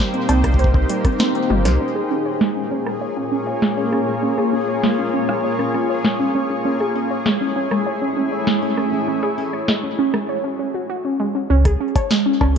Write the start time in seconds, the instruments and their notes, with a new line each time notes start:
Already playing: ambient pad A#3 D#4 G4 C5, synth texture C5
0.00 synth pluck G3
0.14 synth pluck C4, closed hi-hat
0.29 sub bass C2, synth pluck C4, closed hi-hat, cowbell
0.44 synth pluck G3, kick, cross-stick, closed hi-hat
0.54 kick
0.59 synth pluck C5, closed hi-hat
0.64 kick
0.74 synth pluck C4, kick
0.89 synth pluck G3, closed hi-hat
1.05 synth pluck C4, kick, cross-stick, closed hi-hat
1.20 synth pluck C4, snare, closed hi-hat
1.35 synth pluck C4, closed hi-hat
1.50 sub bass G1, synth pluck F4, high tom
1.65 sub bass C2, synth pluck C5, cross-stick, snare, closed hi-hat
1.80 ambient pad A#3 F4 G#4 C#5, synth pluck C#4, synth texture G#4
1.95 synth pluck G#4
2.11 synth pluck C#4, open hi-hat
2.26 synth pluck C#5
2.41 synth pluck G#3, snare
2.56 synth pluck C#4
2.71 synth pluck C#4
2.86 synth pluck G#3, cross-stick
3.01 synth pluck C#5
3.17 synth pluck C#4
3.32 synth pluck C#4
3.47 synth pluck C#5
3.62 synth pluck G#3, snare
3.77 synth pluck C#4, open hi-hat
3.92 synth pluck C#4, cross-stick
4.07 synth pluck C#4
4.23 synth pluck C#4
4.38 synth pluck G#4, cross-stick
4.53 synth pluck C#4
4.61 open hi-hat
4.68 synth pluck C#5
4.83 synth pluck G#3, snare
4.98 synth pluck C#4
5.14 synth pluck C#4
5.29 synth pluck G#3, cross-stick
5.44 synth pluck C#5
5.59 synth pluck C#4, cross-stick
5.74 synth pluck C#4, cross-stick
5.89 synth pluck C#5
6.05 synth pluck G#3, snare
6.20 synth pluck C#4
6.35 synth pluck C#4
6.50 synth pluck C#4
6.65 ambient pad A3 E4 G#4, synth pluck C#4
6.80 synth pluck G#4, cross-stick
6.96 synth pluck C#4, open hi-hat
7.11 synth pluck C#5
7.26 synth pluck G#3, snare
7.41 synth pluck C#4
7.56 synth pluck C#4
7.71 synth pluck G#3, cross-stick
7.87 synth pluck C#5
8.02 synth pluck C#4
8.17 synth pluck C#4
8.32 synth pluck C#5
8.47 synth pluck G#3, snare
8.62 synth pluck C#4, open hi-hat
8.77 synth pluck C#4, cross-stick
8.93 synth pluck C#4
9.08 synth pluck C#4
9.23 synth pluck G#4, cross-stick
9.38 synth pluck C#4, open hi-hat
9.53 synth pluck C#5
9.68 synth pluck G#3, snare
9.84 synth pluck C#4
9.99 synth pluck C#4
10.14 synth pluck G#3, cross-stick
10.29 synth pluck C#5
10.44 synth pluck C#4
10.59 synth pluck C#4
10.74 synth pluck F#4
10.90 synth pluck F#4
11.05 synth pluck C#4
11.20 synth pluck G#3
11.35 synth pluck C#4
11.50 sub bass C#2, ambient pad A#3 F4 G#4 C#5, synth pluck C#4
11.65 synth pluck G#4, kick, cross-stick, closed hi-hat
11.80 synth pluck C#4
11.96 synth pluck C#5, kick, closed hi-hat, cowbell
12.11 synth pluck G#3, snare
12.26 synth pluck C#4
12.41 sub bass C#2, synth pluck C#4, kick, cross-stick, cowbell